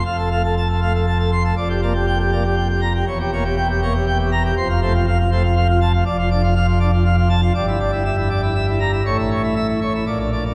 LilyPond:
<<
  \new Staff \with { instrumentName = "Pipe organ" } { \time 3/4 \key f \major \tempo 4 = 120 f''16 a'16 f''16 a'16 a''16 a'16 f''16 a'16 a''16 a'16 c'''16 a'16 | d''16 g'16 d''16 g'16 g''16 g'16 d''16 g'16 g''16 g'16 bes''16 g'16 | cis''16 g'16 cis''16 g'16 g''16 g'16 cis''16 g'16 g''16 g'16 bes''16 g'16 | c''16 f'16 c''16 f'16 f''16 f'16 c''16 f'16 f''16 f'16 a''16 f'16 |
\key d \minor d''16 f'16 d''16 f'16 f''16 f'16 d''16 f'16 f''16 f'16 a''16 f'16 | d''16 e'16 d''16 e'16 e''16 e'16 d''16 e'16 e''16 e'16 bes''16 e'16 | cis''16 e'16 cis''16 e'16 e''16 e'16 cis''16 e'16 d''16 d'16 d''16 d'16 | }
  \new Staff \with { instrumentName = "Pipe organ" } { \clef bass \time 3/4 \key f \major << { f,8 a16 r8. a16 r4 r16 | f,8 bes16 r8. bes16 r4 r16 | e,8 bes16 r8. bes16 r4 r16 | f,8 a16 r8. a16 r4 r16 |
\key d \minor f,8 d'16 r8. d'16 r4 r16 | g,2. | a,2 bes,8 d'16 r16 | } \\ { f,,2. | f,,2. | e,,2. | f,,2. |
f,,2. | g,,2. | a,,2 bes,,4 | } >> }
>>